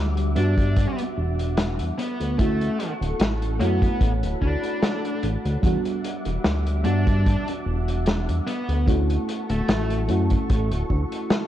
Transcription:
Already playing: D2 G3 B3 D4 F#4 E5 F#5 D6
0.17 closed hi-hat
0.35 G2 G3 B3 D4 F#4, closed hi-hat
0.58 kick, closed hi-hat
0.76 kick, closed hi-hat
0.98 closed hi-hat
1.18 E1
1.39 closed hi-hat
1.57 snare, closed hi-hat
1.79 E2, closed hi-hat
1.98 B3 A4 C#6, closed hi-hat
2.20 D2, closed hi-hat
2.37 A3 C#4 E4 F#4, kick, closed hi-hat
2.61 closed hi-hat
2.80 closed hi-hat
3.01 D1, closed hi-hat
3.20 A1, snare, closed hi-hat
3.42 closed hi-hat
3.59 F#2 A3 B3 E4 F#4 C#5 B5, closed hi-hat
3.82 kick, closed hi-hat
4.01 A1, kick, closed hi-hat
4.23 D1, closed hi-hat
4.42 D2 D4, kick
4.63 closed hi-hat
4.83 snare, closed hi-hat
5.05 closed hi-hat
5.23 A1, closed hi-hat
5.45 D2, closed hi-hat
5.62 E2 G3 B3 D4 F#4 E5 D6, kick, closed hi-hat
5.85 closed hi-hat
6.04 closed hi-hat
6.25 E1, closed hi-hat
6.44 D2, snare, closed hi-hat
6.66 closed hi-hat
6.83 G2 G3 B3 D4 F#4, closed hi-hat
7.07 kick, closed hi-hat
7.26 kick, closed hi-hat
7.48 closed hi-hat
7.66 E1
7.88 closed hi-hat
8.06 snare, closed hi-hat
8.28 E2, closed hi-hat
8.47 B3 A4 C#6, closed hi-hat
8.69 D2, closed hi-hat
8.86 A3 C#4 E4 F#4, kick, closed hi-hat
9.10 closed hi-hat
9.29 closed hi-hat
9.50 D1 A3, closed hi-hat
9.68 A1, snare, closed hi-hat
9.90 closed hi-hat
10.08 F#2 A3 C#4 E4 F#4, closed hi-hat
10.30 kick, closed hi-hat
10.50 A1, kick, closed hi-hat
10.71 D1, closed hi-hat
10.90 D2, kick
11.12 closed hi-hat
11.30 snare, closed hi-hat

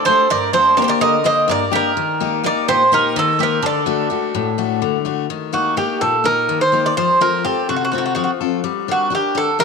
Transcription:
Already playing: D3
0.05 A3 D4 G4 A4 C5
0.30 G2 A#4 D5
0.53 A#3 D4 G4 A4 C5
0.77 A#3 D4 G4 A#4 D5
0.82 A4 C5
0.88 A#4 D5
1.01 D3 A#4 D#5
1.24 A#3 D4 G4 C5 D#5
1.48 G2 A#4 D5
1.72 A#3 D4 G4 A#4
1.97 D#3
2.20 A#3 D#4 G4
2.44 A#3 D#4 G4 A#4 D5
2.68 A#2 G4 C5
2.92 A#3 D#4 G4 A#4
3.16 D#3 D#4 A4
3.39 A#3 D#4 G4
3.43 A#4
3.62 D3 A4 D5
3.86 A3 D4 F#4
4.10 A3 D4 F#4
4.35 A2
4.58 A3 D4 F#4
4.82 D3
5.05 A3 D4 F#4
5.30 D#3
5.53 A#3 D#4 F#4 G4
5.77 A#3 D#4 G4
6.01 A#2 A4
6.24 A#3 D#4 G4 A#4
6.49 D#3
6.61 C5
6.72 A#3 D#4 G4
6.86 D5
6.97 F3 C5
7.21 C4 F4 A4 A#4
7.45 C4 F4 G4 A4
7.69 C3 F#4
7.76 F#4
7.85 F#4
7.92 C4 F4 F#4 A4
7.98 F#4
8.06 F#4
8.15 F3 F#4
8.24 F#4
8.41 C4 F4 A4
8.64 G3
8.88 D4 F#4 G4 A#4
9.10 D4 G4 A#4
9.15 G4
9.35 D3 A4
9.59 D4 G4 A#4

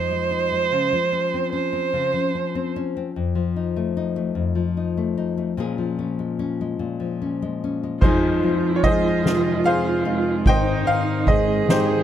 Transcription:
Already playing: F2 F3 D#4 C5
0.11 G#3
0.31 D#4
0.52 G#3
0.72 C#3
0.93 F3
1.12 C#4
1.34 C4
1.53 C#4 C5
1.73 C4
1.93 C#3
2.14 F3
2.35 C#4
2.55 C4
2.76 C#4
2.97 C4
3.16 F2
3.35 F3
3.56 D#4
3.76 A3
3.97 D#4
4.16 A3
4.35 F2
4.55 F3
4.77 D#4
4.97 A3
5.17 D#4
5.37 A3
5.57 A#2 F3 G#3 C#4 G#4
5.78 F3
5.99 C#4
6.19 G#3
6.39 C#4
6.61 G#3
6.79 A#2
7.00 F3
7.22 C#4
7.42 G#3
7.64 C#4
7.83 G#3
8.01 F2 F3 G#3 D#4 F4 G#4 C5, kick, crash
8.43 F3 C4, ride
8.76 C#5
8.83 G#3 G#4 C5 D#5, kick, ride
9.23 C3 F4, snare, ride
9.64 C4 G#4 C5 F5, ride
10.05 G#3 D#4, ride
10.45 G#2 D#3 C4 D#4 G5, kick, ride
10.49 C5 D#5
10.86 D#3 C4 F5, ride
11.27 G#3 C4 G#4 D#5, kick, ride
11.66 G#2 C5, snare, ride
11.70 D#4 G4

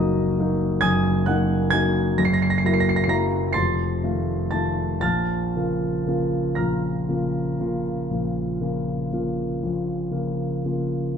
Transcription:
Already playing: F#1 F#2 F#3 A#3 D#4 D#5 A#5 D#6
0.39 F#3 A#3 D#4
0.81 F#1 F#2 G#5 D#6 G#6
1.26 F#3 A#3 D#4 F#5 F#6
1.70 F#3 A#3 D#4 G#5 G#6
2.18 F#1 F#2 A#6
2.25 C7
2.33 A#6
2.42 C7
2.50 A#6
2.58 C7
2.64 F#3 A#3 E4 A#6
2.73 C7
2.80 A#6
2.89 C7
2.96 A#6
3.04 C7
3.08 F#3 A#3 E4 A#5 A#6
3.53 F1 F2 C6 A6 C7
4.03 D#3 A3 F4
4.51 D#3 A3 F4 A5 A6
4.99 A#1 A#2 A5 F6 A6
5.56 C#3 A#3 F4
6.07 C#3 A#3 F4
6.55 A#1 A#2 A#5 F6 A#6
7.09 C#3 A#3 F4
7.60 C#3 A#3 F4
8.10 A#1 A#2
8.61 C#3 A#3 F4
9.13 C#3 A#3 F4
9.63 A#1 A#2
10.11 C#3 A#3 F4
10.65 C#3 A#3 F4

